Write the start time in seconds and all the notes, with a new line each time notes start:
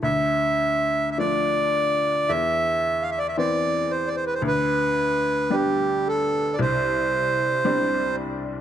0.03 D2 E5
1.11 E5
1.18 F3 A3 D4 D5
2.29 E2 E5
3.02 F5
3.11 E5
3.18 D5
3.28 E5
3.37 E3 B3 C4 D5
3.91 C5
4.07 D5
4.16 C5
4.27 B4
4.34 C5
4.42 D2
4.47 B4
5.50 G3 B3 D4 G4
6.08 A4
6.53 D5
6.59 C2 C5
7.65 G3 C4 D4